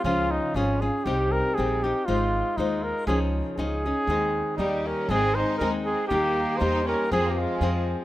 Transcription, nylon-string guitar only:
X:1
M:2/4
L:1/8
Q:"Swing" 1/4=119
K:Ab
V:1 name="Nylon-string guitar"
[D,F,DFA]2 [F,DFA] [DFA] | [C,G,CEG]2 [G,CEG] [CEG] | [A,EFc]2 [A,EFc]2 | [D,F,DEA]2 [F,DEA] [DEA] |
[E,A,CEA]2 [G,B,EG]2 | [A,,E,A,CEA]2 [A,CEA]2 | [E,G,B,EG]2 [G,B,EG]2 | [F,CFA]2 [F,CFA]2 |]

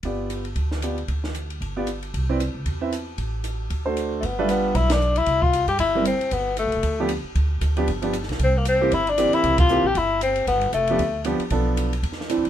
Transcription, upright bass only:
X:1
M:4/4
L:1/8
Q:"Swing" 1/4=230
K:Gmix
V:1 name="Upright bass" clef=bass
G,,,4 D,,4 | D,,4 G,,,4 | C,,3 ^C,, E,,4 | A,,,4 D,,4 |
G,,,4 B,,,4 | C,,3 G,, G,,,3 z | G,,,2- (3G,,, B,,, F,,, D,,3 z | D,,2 D,,2 G,,,3 B,,, |
C,,4 G,,,3 z | C,,3 _B,,, G,,,4 | G,,,2 F,,,2 D,,3 z | B,,,4 E,,2- (3E,, D,, _B,,, |]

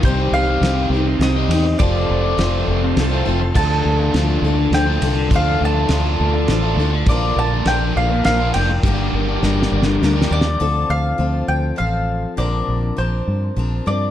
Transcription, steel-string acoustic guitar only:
X:1
M:3/4
L:1/8
Q:1/4=102
K:Dphr
V:1 name="Steel-string acoustic guitar"
[C,G,CEG]2 [G,CEG] [CEG] [G,CEG] [CEG] | [F,CFA]2 [F,CFA]2 [F,CFA] [CFA] | [D,F,DFA]2 [F,DFA] [DFA] [F,DFA] [DFA] | [D,F,DFA]2 [F,DFA]2 [F,DFA] [DFA] |
[B,,D,F,B,DB]2 [F,B,DB]2 [F,B,DB]2 | [G,,D,G,B,DB]2 [G,B,DB]2 [G,B,DB]2 | [D,F,CFA]2 [F,CFA]2 [F,CFA]2 | [B,,D,F,CDB]2 [F,CDB]2 [F,CDB] [F,CDB] |]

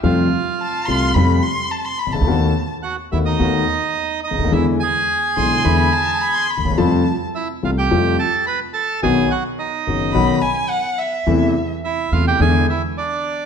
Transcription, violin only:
X:1
M:4/4
L:1/16
Q:1/4=107
K:Flyd
V:1 name="Violin"
z4 a2 c'2 b2 c'2 a c' b a- | a3 z12 z | z6 c'2 b2 a2 b c' b2 | a3 z12 z |
z8 b2 ^g2 ^f2 e2- | e3 z12 z |]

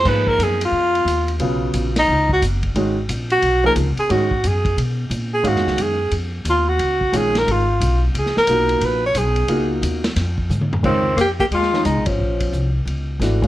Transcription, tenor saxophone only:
X:1
M:4/4
L:1/8
Q:"Swing" 1/4=178
K:G#dor
V:1 name="Tenor saxophone"
B A G E4- E | z3 D2 F z2 | z3 F2 A z G | F2 G2 z3 G |
F2 G2 z2 E F- | F2 G A E3 z | G A3 B c G2- | G z6 z |
[K:Cphr] C2 G G F2 E D- | D3 z4 z |]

